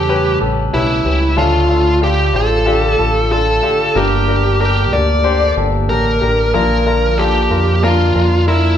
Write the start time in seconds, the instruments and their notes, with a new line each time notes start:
Already playing: fingered electric bass E2, grand piano A2 E3 C#4 G4 A4 B4, analog synth pad C#3 G3 A3, lead electric guitar G4
0.09 grand piano C#4 G4 B4
0.41 fingered electric bass A1, grand piano C#4 G4 A4
0.73 fingered electric bass B1, grand piano C#4 G4 B4, lead electric guitar E4
1.05 fingered electric bass C#2, grand piano C#4 G4 B4
1.37 fingered electric bass D2, grand piano A2 D4 F4 A4, analog synth pad D3 F4, lead electric guitar F4
1.69 grand piano D4 F4 A4
2.01 grand piano D4 F4 G4, lead electric guitar G4
2.34 fingered electric bass A1, grand piano D4 F4 C5, lead electric guitar A4
2.66 grand piano D4 F4 G4
2.99 fingered electric bass A1, grand piano D4 F4 A4
3.31 grand piano D4 F4 A4, lead electric guitar A4
3.62 grand piano D4 F4 G4
3.95 fingered electric bass G1, grand piano G2 D3 D4 G4 A#4, analog synth pad A#3 G4, lead electric guitar G4
4.28 grand piano D4 G4 A#4
4.59 grand piano D4 G4 A#4, lead electric guitar G4
4.92 fingered electric bass D2, grand piano D4 G4 A#4, lead electric guitar D5
5.24 grand piano D4 G4 C5
5.57 fingered electric bass G1, grand piano D4 G4 A4
5.89 fingered electric bass A1, grand piano D4 G4 A#4, lead electric guitar A#4
6.21 fingered electric bass A1, grand piano D4 G4 A#4
6.53 fingered electric bass A#1, grand piano A#2 F3 D4 F4 A#4, analog synth pad F3, lead electric guitar A#4
6.86 grand piano D4 F4 A#4
7.19 grand piano D4 F4 A4, lead electric guitar G4
7.51 fingered electric bass F2, grand piano D4 F4 A#4
7.83 grand piano D4 F4 A#4, lead electric guitar F4
8.15 fingered electric bass F2, grand piano D4 F4 A#4
8.47 grand piano D4 F4 A#4, lead electric guitar E4